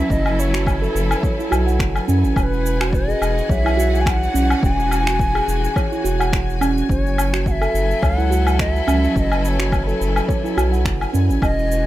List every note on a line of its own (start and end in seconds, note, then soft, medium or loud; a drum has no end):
0.00 2.37 F#3 medium
0.00 0.37 C#4 loud
0.00 2.37 E4 medium
0.00 2.37 A4 medium
0.00 4.19 B4 medium
0.00 0.12 E5 loud
0.00 11.86 G#5 medium
0.10 0.88 F#1 loud
0.10 0.41 D#5 loud
0.10 kick loud
0.10 cabasa soft
0.26 cabasa soft
0.26 low woodblock medium
0.39 0.96 C#5 medium
0.39 cabasa medium
0.54 0.61 F#4 medium
0.54 finger snap medium
0.54 cabasa soft
0.67 kick loud
0.67 cabasa soft
0.67 low woodblock medium
0.82 1.22 A4 medium
0.82 cabasa soft
0.95 1.15 F#1 loud
0.95 cabasa medium
1.11 cabasa soft
1.11 low woodblock medium
1.23 1.38 C#5 medium
1.23 kick loud
1.23 cabasa soft
1.39 1.51 E4 medium
1.39 cabasa soft
1.51 1.81 B1 loud
1.51 1.66 F#4 loud
1.51 cabasa medium
1.51 low woodblock medium
1.67 1.74 F#5 medium
1.67 cabasa soft
1.80 2.00 F#1 loud
1.80 finger snap medium
1.80 kick loud
1.80 cabasa soft
1.96 cabasa soft
1.96 low woodblock medium
2.08 2.26 F#2 loud
2.08 2.36 C#4 loud
2.08 cabasa medium
2.24 2.33 A1 medium
2.24 cabasa soft
2.36 3.15 E1 loud
2.36 6.90 E3 medium
2.36 2.44 C#5 medium
2.36 kick loud
2.36 cabasa soft
2.36 low woodblock medium
2.43 2.96 B4 medium
2.43 6.89 F#5 medium
2.53 cabasa soft
2.66 cabasa medium
2.81 2.88 F#4 medium
2.81 finger snap medium
2.81 cabasa soft
2.81 low woodblock medium
2.93 3.52 D#5 medium
2.93 kick loud
2.93 cabasa soft
3.08 8.24 F#4 medium
3.08 3.48 G#4 medium
3.08 cabasa soft
3.22 3.41 E1 loud
3.22 cabasa medium
3.22 low woodblock medium
3.38 cabasa soft
3.49 4.28 B1 medium
3.49 3.64 C#5 medium
3.49 4.02 E5 loud
3.49 kick loud
3.49 cabasa soft
3.65 3.77 E4 medium
3.65 cabasa soft
3.65 low woodblock medium
3.77 3.92 F#4 loud
3.77 cabasa medium
3.93 4.01 F#5 medium
3.93 cabasa soft
4.01 4.10 G#5 medium
4.06 4.63 F#5 loud
4.06 finger snap medium
4.06 kick loud
4.06 cabasa soft
4.06 low woodblock medium
4.23 cabasa soft
4.34 4.55 B1 medium
4.34 4.90 C#4 medium
4.34 cabasa medium
4.50 cabasa soft
4.50 low woodblock medium
4.63 5.41 E1 loud
4.63 6.29 G#5 loud
4.63 kick loud
4.63 cabasa soft
4.79 cabasa soft
4.91 cabasa medium
4.91 low woodblock medium
5.07 5.14 F#4 medium
5.07 finger snap medium
5.07 cabasa soft
5.19 kick loud
5.19 cabasa soft
5.35 5.75 G#4 medium
5.35 cabasa soft
5.35 low woodblock medium
5.48 5.68 E1 loud
5.48 cabasa medium
5.64 cabasa soft
5.76 5.91 C#5 medium
5.76 kick loud
5.76 cabasa soft
5.76 low woodblock medium
5.92 6.03 E4 medium
5.92 cabasa soft
6.04 6.83 E1 medium
6.04 6.19 F#4 loud
6.04 cabasa medium
6.20 6.27 F#5 medium
6.20 cabasa soft
6.20 low woodblock medium
6.33 finger snap medium
6.33 kick loud
6.33 cabasa soft
6.50 cabasa soft
6.61 6.89 C#4 loud
6.61 cabasa medium
6.61 low woodblock medium
6.78 cabasa soft
6.89 7.68 F#1 loud
6.89 11.42 F#3 medium
6.89 7.49 C#5 medium
6.89 kick loud
6.89 cabasa soft
7.06 cabasa soft
7.15 11.42 E4 medium
7.15 11.86 B4 medium
7.15 low woodblock medium
7.19 cabasa medium
7.33 7.41 F#4 medium
7.33 finger snap medium
7.33 cabasa soft
7.38 11.42 A4 medium
7.46 7.52 F#5 medium
7.46 kick loud
7.46 cabasa soft
7.51 8.05 E5 loud
7.61 8.01 A4 medium
7.61 cabasa soft
7.61 low woodblock medium
7.74 7.94 F#1 loud
7.74 cabasa medium
7.91 cabasa soft
8.03 8.81 C#2 medium
8.03 8.17 C#5 medium
8.03 8.62 F#5 loud
8.03 kick loud
8.03 cabasa soft
8.03 low woodblock medium
8.18 8.30 E4 medium
8.18 cabasa soft
8.31 8.46 F#4 loud
8.31 cabasa medium
8.46 8.54 F#5 medium
8.46 cabasa soft
8.46 low woodblock medium
8.59 8.71 D#5 loud
8.59 finger snap medium
8.59 kick loud
8.59 cabasa soft
8.71 9.16 E5 loud
8.76 cabasa soft
8.87 9.08 C#2 medium
8.87 9.43 C#4 loud
8.87 cabasa medium
8.87 low woodblock medium
9.04 cabasa soft
9.16 9.94 F#1 loud
9.16 9.44 D#5 loud
9.16 9.20 E5 medium
9.16 kick loud
9.16 cabasa soft
9.32 cabasa soft
9.32 low woodblock medium
9.44 9.49 D#5 medium
9.44 cabasa medium
9.48 10.01 C#5 medium
9.59 9.67 F#4 medium
9.59 finger snap medium
9.59 cabasa soft
9.72 kick loud
9.72 cabasa soft
9.72 low woodblock medium
9.87 10.28 A4 medium
9.87 cabasa soft
10.01 10.21 F#1 loud
10.01 cabasa medium
10.16 cabasa soft
10.16 low woodblock medium
10.28 10.43 C#5 medium
10.28 kick loud
10.28 cabasa soft
10.44 10.56 E4 medium
10.44 cabasa soft
10.57 10.87 B1 loud
10.57 10.72 F#4 loud
10.57 cabasa medium
10.57 low woodblock medium
10.72 10.80 F#5 medium
10.72 cabasa soft
10.85 11.05 F#1 loud
10.85 finger snap medium
10.85 kick loud
10.85 cabasa soft
11.01 cabasa soft
11.01 low woodblock medium
11.13 11.31 F#2 loud
11.13 11.42 C#4 loud
11.13 cabasa medium
11.30 11.38 A1 medium
11.30 cabasa soft
11.42 11.86 E1 loud
11.42 11.86 E3 medium
11.42 11.86 D#5 loud
11.42 kick loud
11.42 cabasa soft
11.42 low woodblock medium
11.59 cabasa soft
11.71 11.86 F#4 medium
11.71 cabasa medium